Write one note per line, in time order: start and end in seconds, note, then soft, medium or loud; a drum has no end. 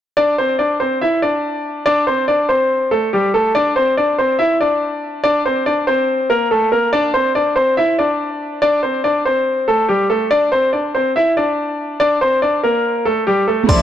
0.17 0.34 D4 medium
0.17 0.34 D5 loud
0.38 0.56 C4 medium
0.38 0.55 C5 medium
0.59 0.76 D4 medium
0.59 0.76 D5 medium
0.80 0.97 C4 medium
0.80 0.97 C5 medium
1.01 1.19 E4 medium
1.01 1.18 E5 medium
1.22 1.82 D4 medium
1.22 1.82 D5 medium
1.86 2.03 D4 medium
1.86 2.03 D5 loud
2.07 2.24 C4 medium
2.07 2.24 C5 medium
2.28 2.45 D4 medium
2.28 2.45 D5 medium
2.49 2.89 C4 medium
2.49 2.89 C5 medium
2.91 3.09 A3 medium
2.91 3.08 A4 medium
3.13 3.30 G3 medium
3.13 3.30 G4 medium
3.34 3.51 A3 medium
3.34 3.51 A4 medium
3.55 3.72 D4 medium
3.55 3.72 D5 loud
3.76 3.93 C4 medium
3.76 3.93 C5 medium
3.97 4.15 D4 medium
3.97 4.14 D5 medium
4.18 4.36 C4 medium
4.18 4.35 C5 medium
4.39 4.56 E4 medium
4.39 4.56 E5 medium
4.61 5.21 D4 medium
4.61 5.20 D5 medium
5.24 5.41 D4 medium
5.24 5.41 D5 loud
5.46 5.63 C4 medium
5.46 5.62 C5 medium
5.66 5.83 D4 medium
5.66 5.83 D5 medium
5.87 6.27 C4 medium
5.87 6.27 C5 medium
6.30 6.47 A#3 medium
6.30 6.46 A#4 medium
6.51 6.68 A3 medium
6.51 6.68 A4 medium
6.72 6.89 A#3 medium
6.72 6.89 A#4 medium
6.93 7.10 D4 medium
6.93 7.10 D5 loud
7.14 7.31 C4 medium
7.14 7.31 C5 medium
7.35 7.52 D4 medium
7.35 7.52 D5 medium
7.56 7.73 C4 medium
7.56 7.73 C5 medium
7.77 7.95 E4 medium
7.77 7.94 E5 medium
7.99 8.59 D4 medium
7.99 8.58 D5 medium
8.62 8.79 D4 medium
8.62 8.79 D5 loud
8.83 9.00 C4 medium
8.83 9.00 C5 medium
9.04 9.21 D4 medium
9.04 9.21 D5 medium
9.25 9.66 C4 medium
9.25 9.65 C5 medium
9.68 9.85 A3 medium
9.68 9.84 A4 medium
9.89 10.06 G3 medium
9.89 10.05 G4 medium
10.10 10.27 A3 medium
10.10 10.27 A4 medium
10.31 10.48 D4 medium
10.31 10.48 D5 loud
10.52 10.69 C4 medium
10.52 10.69 C5 medium
10.73 10.90 D4 medium
10.73 10.90 D5 medium
10.95 11.12 C4 medium
10.95 11.11 C5 medium
11.16 11.33 E4 medium
11.16 11.33 E5 medium
11.37 11.97 D4 medium
11.37 11.96 D5 medium
12.00 12.17 D4 medium
12.00 12.17 D5 loud
12.21 12.39 C4 medium
12.21 12.38 C5 medium
12.42 12.59 D4 medium
12.42 12.59 D5 medium
12.63 13.03 A#3 medium
12.63 13.03 A#4 medium
13.05 13.23 A3 medium
13.05 13.22 A4 medium
13.27 13.44 G3 medium
13.27 13.44 G4 medium
13.47 13.65 A3 medium
13.47 13.64 A4 medium
13.63 13.82 A3 medium
13.63 13.82 A4 medium
13.69 13.82 A1 loud
13.69 13.82 C3 medium
13.69 13.82 E3 medium
13.69 13.82 A3 medium
13.69 13.82 D4 medium
13.69 13.82 E4 medium
13.69 13.82 C5 medium
13.69 13.82 D5 loud
13.69 13.82 C6 loud
13.69 kick loud
13.69 closed hi-hat medium
13.69 crash loud
13.74 13.82 E5 medium